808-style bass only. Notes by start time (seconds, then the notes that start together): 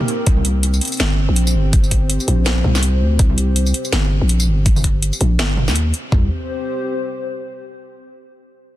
0.27 C2
1.00 G1
1.29 A#1
1.55 G1
2.28 A#1
2.64 C2
3.01 D2
3.19 C2
3.93 G1
4.21 A#1
4.48 G1
5.21 A#1
5.39 G1
5.68 D#2
6.12 C2